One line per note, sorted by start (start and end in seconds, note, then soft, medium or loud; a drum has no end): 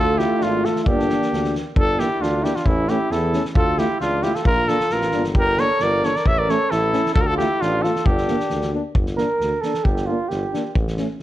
0.00 0.22 D2 medium
0.00 0.88 A3 medium
0.00 0.19 F4 loud
0.00 0.88 F4 medium
0.00 0.20 A4 loud
0.18 0.41 E4 medium
0.18 0.44 G4 loud
0.18 snare soft
0.39 0.67 G#1 medium
0.39 0.64 D4 medium
0.39 0.67 F4 medium
0.39 snare soft
0.62 0.79 F4 medium
0.62 0.82 A4 medium
0.62 snare soft
0.76 0.86 F4 medium
0.76 snare soft
0.82 1.53 D4 medium
0.82 0.89 A4 medium
0.86 1.11 G1 medium
0.86 1.58 A#3 medium
0.86 1.58 D4 medium
0.86 1.54 G4 loud
0.86 kick medium
1.00 snare soft
1.10 snare soft
1.22 snare soft
1.32 1.56 D2 medium
1.32 snare soft
1.44 snare soft
1.55 snare soft
1.75 2.01 G1 medium
1.75 2.01 D4 medium
1.75 2.01 A4 loud
1.75 kick medium
1.98 2.07 A#3 medium
1.98 2.08 D4 medium
1.98 2.23 E4 medium
1.98 2.23 G4 loud
1.98 snare soft
2.21 2.45 D2 medium
2.21 2.44 D4 medium
2.21 2.46 F4 medium
2.21 snare soft
2.43 2.53 A#3 soft
2.43 2.52 D4 medium
2.43 2.57 E4 medium
2.43 2.57 G4 medium
2.43 snare soft
2.56 2.67 D4 medium
2.56 2.68 F4 medium
2.56 snare soft
2.65 2.91 A1 medium
2.65 2.90 C#4 medium
2.65 2.91 E4 medium
2.65 kick medium
2.88 2.98 A3 medium
2.88 2.98 C#4 medium
2.88 3.10 E4 medium
2.88 3.13 G4 medium
2.88 snare soft
3.10 3.35 E2 medium
3.10 3.45 E4 medium
3.10 3.45 A4 medium
3.10 snare soft
3.33 3.42 A3 soft
3.33 3.42 C#4 medium
3.33 snare soft
3.45 snare soft
3.55 3.81 D2 medium
3.55 3.80 F4 loud
3.55 3.80 A4 loud
3.55 kick loud
3.78 3.88 A3 medium
3.78 4.01 E4 medium
3.78 3.87 F4 medium
3.78 4.00 G4 medium
3.78 snare soft
4.01 4.25 C#2 medium
4.01 4.24 D4 medium
4.01 4.24 F4 medium
4.01 snare soft
4.22 4.34 A3 soft
4.22 4.35 E4 medium
4.22 4.32 F4 medium
4.22 4.37 G4 medium
4.22 snare soft
4.34 4.43 F4 medium
4.34 4.46 A4 medium
4.34 snare soft
4.43 4.70 A#1 medium
4.43 4.66 F4 medium
4.43 4.70 A#4 loud
4.43 kick medium
4.66 4.78 A#3 medium
4.66 4.77 D4 medium
4.66 4.90 F4 medium
4.66 4.94 A4 loud
4.66 snare soft
4.80 snare soft
4.90 5.11 A1 medium
4.90 5.25 F4 loud
4.90 5.26 A#4 medium
4.90 snare soft
5.01 snare soft
5.11 5.34 G1 medium
5.11 5.24 A#3 soft
5.11 5.22 D4 medium
5.11 snare soft
5.24 snare soft
5.35 5.61 G1 medium
5.35 5.59 G4 medium
5.35 kick medium
5.39 5.61 A#4 loud
5.57 5.68 A#3 medium
5.57 5.67 D4 medium
5.57 5.84 A4 medium
5.57 5.84 C#5 loud
5.57 snare soft
5.80 6.05 G1 medium
5.80 6.06 A#4 medium
5.80 6.07 D5 loud
5.80 snare soft
6.03 6.13 A#3 soft
6.03 6.12 D4 medium
6.03 6.18 A4 medium
6.03 6.18 C#5 loud
6.03 snare soft
6.16 6.29 A#4 medium
6.16 6.29 D5 medium
6.16 snare soft
6.26 6.51 A1 medium
6.26 6.40 C#5 medium
6.26 6.40 E5 loud
6.26 kick medium
6.38 6.52 A#4 medium
6.38 6.52 D5 loud
6.48 6.58 A3 medium
6.48 6.57 C#4 medium
6.48 6.74 A4 loud
6.48 6.72 C#5 loud
6.48 snare soft
6.71 6.96 A1 medium
6.71 7.15 E4 loud
6.71 7.14 A4 loud
6.71 snare soft
6.93 7.02 A3 soft
6.93 7.02 C#4 medium
6.93 snare soft
7.06 snare soft
7.14 7.41 D2 loud
7.14 7.25 F4 medium
7.14 7.23 A4 loud
7.14 kick loud
7.21 7.32 G4 medium
7.21 7.28 A#4 medium
7.27 7.39 F4 medium
7.27 7.37 A4 loud
7.37 7.47 A3 medium
7.37 7.63 E4 medium
7.37 7.48 F4 medium
7.37 7.63 G4 loud
7.37 snare soft
7.61 7.86 A1 medium
7.61 7.85 D4 medium
7.61 7.84 F4 medium
7.61 snare soft
7.82 7.94 A3 soft
7.82 7.92 F4 medium
7.82 8.08 F4 medium
7.82 8.07 A4 medium
7.82 snare soft
7.96 snare soft
8.06 8.31 G1 loud
8.06 8.74 D4 medium
8.06 8.73 G4 medium
8.06 kick medium
8.18 snare soft
8.28 8.37 A#3 medium
8.28 8.37 D4 medium
8.28 snare soft
8.40 snare soft
8.50 8.76 D2 medium
8.50 snare soft
8.62 snare soft
8.73 8.82 A#3 soft
8.73 8.82 D4 medium
8.95 9.20 G1 medium
8.95 kick medium
9.06 snare soft
9.17 9.26 A#3 medium
9.17 9.27 D4 medium
9.17 9.63 A#4 loud
9.17 snare soft
9.40 9.53 D2 medium
9.40 snare soft
9.61 9.73 A#3 soft
9.61 9.72 D4 medium
9.61 9.86 A4 medium
9.61 snare soft
9.74 snare soft
9.84 10.11 G1 medium
9.84 10.08 G4 medium
9.84 kick medium
9.97 snare soft
10.06 10.18 A#3 medium
10.06 10.16 D4 medium
10.06 10.30 F4 medium
10.29 10.43 G1 medium
10.29 10.74 G4 medium
10.29 snare soft
10.53 10.63 A#3 soft
10.53 10.62 D4 medium
10.53 snare soft
10.75 11.00 A1 medium
10.75 kick medium
10.87 snare soft
10.97 11.08 A3 medium
10.97 11.06 C#4 medium
10.97 snare soft